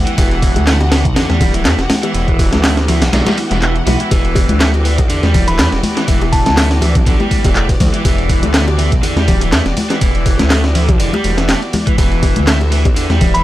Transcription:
Already playing: E3 B3 F#4 G4 F#5
0.06 E3, closed hi-hat
0.18 E1 E3, kick, closed hi-hat, ride, high bongo
0.31 closed hi-hat
0.42 kick, open hi-hat, ride
0.56 D2, closed hi-hat, high bongo, high conga
0.67 A3, snare, clap, closed hi-hat, ride
0.81 closed hi-hat, high bongo
0.91 E3, snare, open hi-hat, ride
1.05 B1, kick, closed hi-hat
1.16 E2 D3, snare, closed hi-hat, ride, high bongo
1.29 E2 G3, snare, closed hi-hat, high conga
1.41 D1, kick, open hi-hat, ride, high bongo, low conga
1.54 E3, closed hi-hat, ride
1.65 E2 A3, snare, clap, closed hi-hat, ride
1.78 E1, snare, closed hi-hat, high bongo
1.90 snare, open hi-hat, ride, high conga
2.03 E3, closed hi-hat, high bongo
2.14 E1 E3, closed hi-hat, ride
2.28 kick, closed hi-hat
2.39 kick, open hi-hat, ride, high bongo
2.52 D2, snare, closed hi-hat, high conga
2.64 A3, snare, clap, closed hi-hat, open hi-hat, high bongo
2.77 snare, closed hi-hat
2.88 E3, open hi-hat, ride, low conga
3.01 B1, snare, closed hi-hat, ride, high bongo, low conga
3.13 B1 D3, snare, closed hi-hat, ride, swell
3.26 G3, snare, closed hi-hat, ride, high bongo, high conga
3.38 open hi-hat, ride
3.51 E1 E3, snare, closed hi-hat
3.62 E3, clap, closed hi-hat, high bongo
3.76 closed hi-hat
3.87 B1 B3, open hi-hat, ride, high bongo, high conga, low conga
4.00 E4, closed hi-hat
4.11 E1 E3 D5, kick, closed hi-hat, ride, high bongo
4.25 closed hi-hat
4.35 kick, open hi-hat, ride, high bongo
4.49 D2, closed hi-hat, high conga
4.60 A3, snare, clap, closed hi-hat, ride
4.74 closed hi-hat, high bongo
4.85 E3, open hi-hat, ride
4.98 B1, kick, closed hi-hat, high bongo
5.09 E2 D3, closed hi-hat, ride
5.23 E2 G3, snare, closed hi-hat, high conga
5.34 D1, kick, open hi-hat, ride, high bongo, low conga
5.48 E3 B5, closed hi-hat, ride
5.59 E2 A3 B5, snare, clap, closed hi-hat, ride, high bongo
5.72 E1, snare, closed hi-hat
5.83 open hi-hat, ride, high conga
5.97 E3, snare, closed hi-hat, high bongo
6.08 E1 E3, kick, closed hi-hat, ride
6.21 closed hi-hat, high bongo
6.32 A5, kick, open hi-hat, ride
6.46 D2 A5, snare, closed hi-hat, high conga
6.57 A3, snare, clap, closed hi-hat, open hi-hat, high bongo
6.71 snare, closed hi-hat
6.81 E3, open hi-hat, ride, high bongo, low conga
6.95 B1, kick, closed hi-hat, low conga
7.06 B1 D3, kick, closed hi-hat, ride
7.20 G3, closed hi-hat, high bongo, high conga
7.31 kick, open hi-hat, ride
7.44 E1 E3, kick, closed hi-hat, ride, high bongo
7.55 A3, clap, closed hi-hat
7.69 kick, closed hi-hat, ride
7.80 D2, kick, open hi-hat, ride, high bongo, high conga, low conga
7.94 E3, closed hi-hat
8.05 E1 E3, kick, closed hi-hat, ride, high bongo
8.18 closed hi-hat
8.29 kick, open hi-hat, ride
8.43 D2, closed hi-hat, high bongo, high conga
8.54 A3, snare, clap, closed hi-hat, ride
8.68 closed hi-hat, high bongo
8.78 E3, open hi-hat, ride
8.92 B1, kick, closed hi-hat
9.03 E2 D3, closed hi-hat, ride, high bongo
9.16 E2 G3, snare, closed hi-hat, high conga
9.28 D1, kick, open hi-hat, ride, high bongo, low conga
9.41 E3, closed hi-hat, ride
9.52 E2 A3, snare, clap, closed hi-hat, ride
9.66 E1, snare, closed hi-hat, high bongo
9.77 open hi-hat, ride, high conga
9.90 E3, snare, closed hi-hat, high bongo
10.01 E1 E3, kick, closed hi-hat, ride
10.15 closed hi-hat
10.26 kick, open hi-hat, ride, high bongo
10.39 D2, snare, closed hi-hat, high conga
10.50 A3, snare, clap, closed hi-hat, open hi-hat, high bongo
10.64 snare, closed hi-hat
10.75 E3, open hi-hat, ride, low conga
10.88 B1, kick, closed hi-hat, high bongo, low conga
11.00 E1 D3, closed hi-hat, ride
11.13 G3, closed hi-hat, high bongo, high conga
11.24 E1, open hi-hat, ride
11.38 E3, snare, closed hi-hat
11.49 A3, snare, clap, closed hi-hat, ride, high bongo
11.62 closed hi-hat
11.73 open hi-hat, ride, high bongo, high conga, low conga
11.87 E3, kick, closed hi-hat
11.98 E1 E3 E5, kick, closed hi-hat, ride, high bongo
12.12 closed hi-hat
12.23 kick, open hi-hat, ride, high bongo
12.36 D2, closed hi-hat, high conga
12.47 A3, snare, clap, closed hi-hat, ride
12.61 closed hi-hat, high bongo
12.72 E3, open hi-hat, ride
12.85 B1, kick, closed hi-hat, high bongo
12.96 E2 D3, closed hi-hat, ride
13.10 E2 G3, snare, closed hi-hat, high conga
13.21 D1, kick, open hi-hat, ride, high bongo, low conga
13.34 E3 B5, closed hi-hat, ride

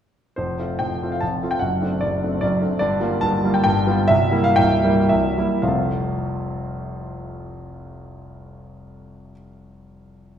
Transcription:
0.36 F1 F2 C5
0.59 A3 C4 F4
0.79 F1 F2 G5
1.03 A3 C4 F4
1.12 F5
1.21 F1 F2 A5
1.43 A3 C4 F4
1.51 G5
1.59 F#1 F#2 F#5
1.82 A3 C4 D4
2.01 F#1 F#2 D5
2.23 A3 C4 D4
2.41 F#1 F#2 D5
2.62 A3 C4 D4
2.79 G1 G2 D5
3.00 G3 A#3 F4
3.21 G1 G2 A5
3.44 G3 A#3 F4
3.54 G5
3.64 G1 G2 G5
3.87 G3 B3 F4
4.08 C1 C2 E5
4.31 G3 A#3 E4
4.44 F5
4.56 C1 C2 G5
4.84 G3 A#3 E4
5.09 C1 C2 E5
5.38 G3 A#3 E4
5.62 F1 C2 F3 A3 C4 F4 F5

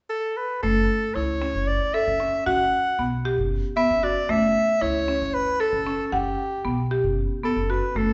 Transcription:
0.10 A4
0.37 B4
0.62 F#1 A3 A4
1.15 C#2 E4 C#5
1.42 C#4
1.55 F#1
1.68 D5
1.94 A4 E5
2.07 F#1
2.20 C#4
2.46 F#1 F#4 F#5
2.99 B1 B3
3.25 G4
3.38 F#1
3.77 B3 E5
3.90 F#1
4.03 F#4 D5
4.29 F#1 A3 E5
4.81 C#2 E4 C#5
5.08 C#4
5.21 F#1
5.34 B4
5.60 A4
5.73 F#1
5.87 C#4
6.06 A4
6.12 F#1 G4 F#5
6.65 B1 B3
6.91 G4
7.04 F#1
7.43 B3 A4
7.56 F#1
7.70 F#4 B4
7.95 F#1 A3 A4

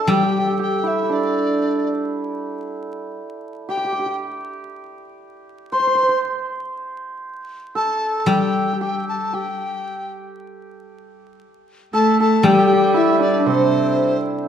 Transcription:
Already playing: D4 A4 A5
0.07 G3 G4 G5
0.16 G4
0.23 G4
0.30 G4
0.39 G4
0.47 G4
0.59 G4 G5
0.83 E4
0.87 E5
1.03 E4
1.09 D4 D5
3.69 G4 G5
3.77 G4
3.85 G4
3.92 G4
3.99 G4
4.06 G4
5.72 C5 C6
5.80 C5
5.87 C5
5.95 C5
6.03 C5
6.09 C5
7.75 A4 A5
8.20 A5
8.26 G3 G4 G5
8.73 A4
8.81 G4 G5
9.09 A5
9.33 G4 G5
11.93 A3 A4 A5
12.20 A4 A5
12.43 G3 G4 G5
12.52 G4
12.59 G4
12.66 G4
12.73 G4
12.81 G4
12.94 E4 E5
13.15 E4
13.19 D4 D5
13.40 D4 D5
13.46 C3 C4 C5

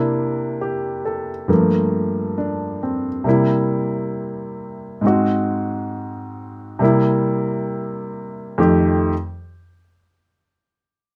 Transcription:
Already playing: C3 A#3 D4 E4
0.61 G4
1.05 A4
1.48 G2 F3 A3 A#3
2.38 D4
2.83 C4
3.24 C3 G3 A#3
3.29 E4
5.01 G#2 G#3 C4
5.07 F#4
6.79 C3 G3 A#3
6.84 E4
8.58 F2 D#3 A3 G4

